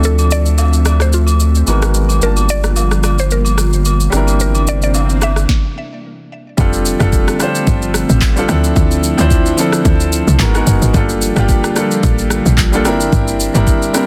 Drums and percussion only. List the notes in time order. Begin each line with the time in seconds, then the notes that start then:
0.04 shaker
0.19 high agogo, shaker
0.31 shaker
0.46 shaker
0.58 high agogo, low woodblock, shaker
0.73 shaker
0.85 cross-stick, high agogo, shaker
1.00 cross-stick, shaker
1.13 shaker
1.27 high agogo, shaker
1.40 shaker
1.55 shaker
1.67 high agogo, shaker
1.82 cross-stick, shaker
1.94 shaker
2.09 high agogo, shaker
2.22 shaker
2.37 high agogo, shaker
2.49 shaker
2.64 cross-stick, shaker
2.76 high agogo, low woodblock, shaker
2.91 cross-stick, shaker
3.03 cross-stick, high agogo, shaker
3.18 shaker
3.31 shaker
3.45 high agogo, shaker
3.58 cross-stick, shaker
3.73 shaker
3.85 high agogo, shaker
4.00 shaker
4.12 cross-stick, shaker
4.27 high agogo, shaker
4.40 shaker
4.55 high agogo, shaker
4.67 shaker
4.82 shaker
4.94 high agogo, low woodblock, shaker
5.10 shaker
5.22 cross-stick, high agogo, shaker
5.36 cross-stick, shaker
5.49 kick, snare
6.58 kick, shaker
6.73 shaker
6.85 shaker
7.00 cross-stick, shaker
7.13 kick, shaker
7.28 cross-stick, shaker
7.40 cross-stick, shaker
7.55 shaker
7.67 kick, shaker
7.82 shaker
7.94 cross-stick, shaker
8.09 shaker
8.22 kick, clap, shaker
8.37 shaker
8.49 cross-stick, shaker
8.64 shaker
8.76 kick, shaker
8.91 shaker
9.03 shaker
9.18 shaker
9.31 kick, shaker
9.46 shaker
9.58 shaker
9.72 cross-stick, shaker
9.85 kick, shaker
10.00 shaker
10.12 shaker
10.28 shaker
10.40 kick, clap, shaker
10.55 cross-stick, shaker
10.67 shaker
10.82 shaker
10.94 kick, shaker
11.09 shaker
11.22 shaker
11.36 cross-stick, shaker
11.49 kick, shaker
11.64 cross-stick, shaker
11.76 cross-stick, shaker
11.91 shaker
12.03 kick, shaker
12.18 shaker
12.30 cross-stick, shaker
12.46 shaker
12.58 kick, clap, shaker
12.73 shaker
12.85 cross-stick, shaker
13.00 shaker
13.13 kick, shaker
13.28 shaker
13.40 shaker
13.55 shaker
13.67 kick, shaker
13.82 shaker
13.94 cross-stick, shaker